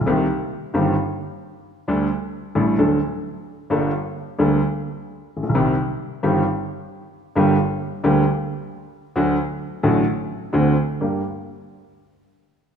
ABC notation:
X:1
M:4/4
L:1/16
Q:1/4=132
K:Gm
V:1 name="Upright piano" clef=bass
[C,,C,E,B,CG]2 z4 [G,,,G,,E,B,CG]2 z8 | [D,,D,G,A,DA]2 z4 [A,,,A,,G,A,DA]2 [D,,D,^F,A,DA]2 z6 | [G,,,G,,G,B,DA]2 z4 [D,,D,G,B,DA]2 z6 z/2 A,,,/2 B,,,/2 =B,,,/2 | [C,,C,E,G,CG]2 z4 [G,,,G,,E,G,CG]2 z8 |
[G,,,G,,D,G,B,G]2 z4 [D,,D,G,B,G]2 z8 | [D,,D,^F,A,^F]2 z4 [A,,,A,,D,F,A,F]2 z4 [D,,D,A,CF]2 z2 | [G,,B,DG]2 z12 z2 |]